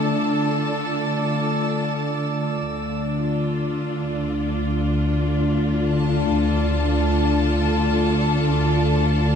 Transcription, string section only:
0.00 2.59 D3 medium
0.00 2.61 D4 soft
0.00 2.61 F4 medium
0.00 2.61 A4 medium
0.00 2.58 A5 medium
2.60 9.35 D3 medium
2.76 9.35 D4 medium
3.20 9.35 F4 medium
5.89 9.35 A5 medium
5.98 9.35 A4 medium

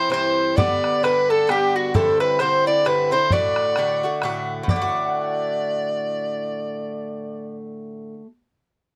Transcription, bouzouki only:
0.00 0.11 C4 soft
0.00 0.10 E4 medium
0.10 0.55 G2 medium
0.10 0.57 E3 medium
0.10 0.57 C4 medium
0.10 0.57 E4 medium
0.56 1.02 G2 medium
0.56 1.03 D3 medium
0.56 1.03 B3 medium
0.56 1.04 D4 medium
1.03 1.46 G2 medium
1.03 1.48 D3 medium
1.03 1.48 B3 medium
1.03 1.49 D4 medium
1.47 1.93 G2 medium
1.47 1.94 D3 medium
1.47 1.94 B3 medium
1.47 1.96 D4 medium
1.94 2.38 G2 medium
1.94 2.41 D3 medium
1.94 2.40 C4 medium
1.94 2.40 E4 medium
2.40 2.66 G2 medium
2.40 2.66 D3 medium
2.40 2.66 C4 medium
2.40 2.65 E4 medium
2.66 2.85 D3 medium
2.66 2.85 C4 soft
2.66 2.86 E4 medium
2.85 3.11 G2 medium
2.85 3.11 D3 medium
2.85 3.11 C4 medium
2.85 3.10 E4 medium
3.11 3.31 D3 soft
3.11 3.32 C4 soft
3.11 3.31 E4 medium
3.32 3.75 A2 medium
3.32 3.77 D3 medium
3.32 3.78 A3 medium
3.32 3.78 F#4 medium
3.77 4.03 A2 soft
3.77 4.03 D3 medium
3.77 4.03 A3 medium
3.77 4.02 F#4 medium
4.03 4.22 D3 soft
4.03 4.23 A3 medium
4.03 4.23 F#4 medium
4.23 4.62 A2 medium
4.23 4.70 D3 medium
4.23 4.75 A3 medium
4.23 4.81 F#4 medium
4.63 8.13 A2 medium
4.71 8.21 D3 medium
4.76 8.26 A3 medium
4.82 8.32 F#4 medium

